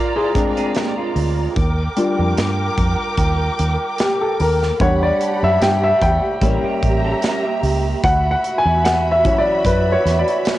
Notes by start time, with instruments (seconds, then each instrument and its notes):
Already playing: grand piano G#3 C4 D4 A#4 C5 D5, clean electric guitar F4 D5, string section F4 D5 A#5
0.16 clean electric guitar E4 C5, grand piano G#4
0.35 grand piano G#3 C4 D4, clean electric guitar D4 A#4, kick, closed hi-hat
0.57 clean electric guitar C4 G#4, closed hi-hat
0.75 clean electric guitar A#3 G4, snare, closed hi-hat
0.98 clean electric guitar G#3 F4
1.16 fingered electric bass D2, open hi-hat
1.56 fingered electric bass D#2, string section A#4 G5 D6, kick, closed hi-hat
1.97 grand piano G3 D4 F4, closed hi-hat
2.19 fingered electric bass F2
2.37 fingered electric bass G2, snare, closed hi-hat
2.77 fingered electric bass F2, vibraphone A#5, kick, closed hi-hat
3.17 fingered electric bass D#2, kick, closed hi-hat
3.59 fingered electric bass D#2, closed hi-hat
3.98 grand piano G4, snare, closed hi-hat
4.21 grand piano A4
4.40 fingered electric bass D#2, grand piano A#4, open hi-hat
4.63 snare
4.80 fingered electric bass E2, grand piano G3 D4 C#5 F#5, string section G4 F#5 B5, kick, closed hi-hat
5.03 grand piano D5
5.21 vibraphone A5, closed hi-hat
5.43 fingered electric bass F#2, grand piano E5
5.61 fingered electric bass G2, grand piano G5, snare, closed hi-hat
5.84 grand piano E5
6.02 fingered electric bass E2, grand piano G5, kick, closed hi-hat
6.41 fingered electric bass A1, grand piano G3 A#3 C#4, clean electric guitar G3 E4, string section G4 E5 A#5, kick, closed hi-hat
6.63 clean electric guitar A#3 G4, muted fingered electric bass stroke
6.82 fingered electric bass A1, kick, closed hi-hat
7.05 clean electric guitar C#4 A4
7.22 clean electric guitar C#4 A#4, snare, closed hi-hat
7.44 clean electric guitar A#3 G4
7.63 fingered electric bass C#2, open hi-hat
8.04 fingered electric bass D2, string section F#4 E5 B5, grand piano F#5, kick, closed hi-hat
8.31 grand piano F#5
8.44 closed hi-hat
8.58 grand piano G#5
8.65 fingered electric bass E2
8.85 grand piano F#5, snare, closed hi-hat
9.12 grand piano E5
9.24 grand piano E3 F#3 C#4, kick, closed hi-hat
9.38 grand piano D5
9.65 fingered electric bass F#2, grand piano B4, kick, closed hi-hat
9.92 grand piano C#5
10.05 fingered electric bass E2, snare, closed hi-hat
10.19 grand piano D5
10.28 closed hi-hat
10.45 snare, closed hi-hat